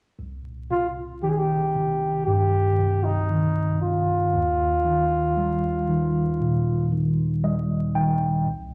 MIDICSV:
0, 0, Header, 1, 3, 480
1, 0, Start_track
1, 0, Key_signature, -3, "minor"
1, 0, Tempo, 1034483
1, 89, Time_signature, 4, 2, 24, 8
1, 4056, End_track
2, 0, Start_track
2, 0, Title_t, "Flugelhorn"
2, 0, Program_c, 0, 56
2, 329, Note_on_c, 0, 65, 61
2, 403, Note_off_c, 0, 65, 0
2, 569, Note_on_c, 0, 67, 61
2, 601, Note_on_c, 0, 68, 45
2, 608, Note_off_c, 0, 67, 0
2, 639, Note_on_c, 0, 67, 65
2, 646, Note_off_c, 0, 68, 0
2, 1047, Note_off_c, 0, 67, 0
2, 1049, Note_on_c, 0, 67, 71
2, 1411, Note_on_c, 0, 63, 59
2, 1418, Note_off_c, 0, 67, 0
2, 1770, Note_off_c, 0, 63, 0
2, 1772, Note_on_c, 0, 65, 58
2, 3192, Note_off_c, 0, 65, 0
2, 4056, End_track
3, 0, Start_track
3, 0, Title_t, "Tine electric piano"
3, 0, Program_c, 1, 4
3, 87, Note_on_c, 1, 36, 41
3, 190, Control_c, 1, 64, 127
3, 327, Note_on_c, 1, 48, 34
3, 570, Note_on_c, 1, 51, 37
3, 808, Note_off_c, 1, 48, 0
3, 813, Note_on_c, 1, 48, 38
3, 1051, Note_on_c, 1, 43, 39
3, 1289, Note_off_c, 1, 48, 0
3, 1294, Note_on_c, 1, 48, 37
3, 1511, Note_off_c, 1, 51, 0
3, 1530, Note_on_c, 1, 51, 37
3, 1767, Note_off_c, 1, 48, 0
3, 1772, Note_on_c, 1, 48, 33
3, 1989, Note_off_c, 1, 36, 0
3, 1991, Note_off_c, 1, 43, 0
3, 1995, Note_off_c, 1, 51, 0
3, 2003, Note_off_c, 1, 48, 0
3, 2011, Note_on_c, 1, 39, 48
3, 2013, Control_c, 1, 64, 0
3, 2090, Control_c, 1, 64, 127
3, 2250, Note_on_c, 1, 51, 36
3, 2492, Note_on_c, 1, 55, 36
3, 2724, Note_off_c, 1, 51, 0
3, 2729, Note_on_c, 1, 51, 38
3, 2971, Note_on_c, 1, 46, 38
3, 3206, Note_off_c, 1, 51, 0
3, 3212, Note_on_c, 1, 51, 38
3, 3431, Note_off_c, 1, 55, 0
3, 3451, Note_on_c, 1, 55, 36
3, 3452, Note_on_c, 1, 75, 42
3, 3674, Note_off_c, 1, 75, 0
3, 3684, Note_off_c, 1, 51, 0
3, 3690, Note_on_c, 1, 51, 36
3, 3690, Note_on_c, 1, 79, 43
3, 3911, Note_off_c, 1, 39, 0
3, 3911, Note_off_c, 1, 46, 0
3, 3913, Note_off_c, 1, 79, 0
3, 3915, Note_off_c, 1, 55, 0
3, 3922, Note_off_c, 1, 51, 0
3, 3930, Note_on_c, 1, 36, 48
3, 3935, Control_c, 1, 64, 0
3, 4001, Control_c, 1, 64, 127
3, 4056, Note_off_c, 1, 36, 0
3, 4056, End_track
0, 0, End_of_file